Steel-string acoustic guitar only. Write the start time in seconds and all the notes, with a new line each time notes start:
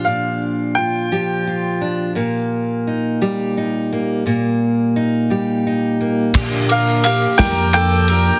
Already playing: F3 G4
0.06 A#2 D4
0.78 F4
1.12 F3 G4
1.47 F4
1.81 D4
2.15 A#2 A#3
2.87 D#4
3.22 G3 G4
3.57 D#4
3.93 A#3
4.26 A#2 A#3
4.96 D#4
5.30 G3 G4
5.67 D#4
6.01 A#3